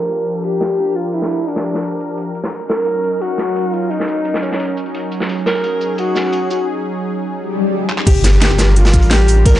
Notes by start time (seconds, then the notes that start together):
Already playing: F3 D4 G4 A#4
0.00 closed hi-hat
0.09 closed hi-hat
0.27 closed hi-hat, shaker
0.43 G4, closed hi-hat
0.61 snare, closed hi-hat, shaker
0.79 closed hi-hat
0.96 F4, closed hi-hat, shaker
1.13 E4, closed hi-hat
1.22 snare
1.31 closed hi-hat, shaker
1.48 D4, closed hi-hat
1.56 snare
1.65 closed hi-hat, shaker
1.74 snare
1.83 closed hi-hat
1.99 closed hi-hat, shaker
2.08 closed hi-hat
2.17 closed hi-hat
2.35 F#3 C#4 D#4, closed hi-hat, shaker
2.44 snare
2.52 closed hi-hat
2.61 closed hi-hat
2.69 A#4, snare, closed hi-hat, shaker
2.78 closed hi-hat
2.86 closed hi-hat
3.03 closed hi-hat, shaker
3.21 F#4, closed hi-hat
3.38 snare, closed hi-hat, shaker
3.56 closed hi-hat
3.73 F4, closed hi-hat, shaker
3.90 D#4, closed hi-hat
4.00 snare
4.07 closed hi-hat, shaker
4.25 closed hi-hat
4.34 snare
4.43 C#4, closed hi-hat, shaker
4.52 snare
4.60 closed hi-hat
4.77 closed hi-hat, shaker
4.86 closed hi-hat
4.94 closed hi-hat
5.12 G#4, closed hi-hat, shaker
5.20 snare
5.29 closed hi-hat
5.38 closed hi-hat
5.46 A#4, snare, closed hi-hat, shaker
5.55 closed hi-hat
5.64 closed hi-hat
5.81 closed hi-hat, shaker
5.98 F#4, closed hi-hat
6.15 snare, closed hi-hat, shaker
6.32 closed hi-hat
6.50 F#4, closed hi-hat, shaker
7.37 swell
7.90 clap
7.98 clap
8.07 G1 G3 D4 F4 G4 A#4, kick, closed hi-hat, crash, impact
8.15 closed hi-hat
8.24 snare, closed hi-hat, shaker
8.33 closed hi-hat
8.41 G4, snare, closed hi-hat
8.51 snare
8.58 snare, closed hi-hat, shaker
8.76 F4, closed hi-hat
8.85 snare, closed hi-hat
8.93 A1, kick, closed hi-hat, shaker
9.02 closed hi-hat
9.10 G4, snare, closed hi-hat
9.28 closed hi-hat, open hi-hat, shaker
9.46 A#4, kick, closed hi-hat
9.54 snare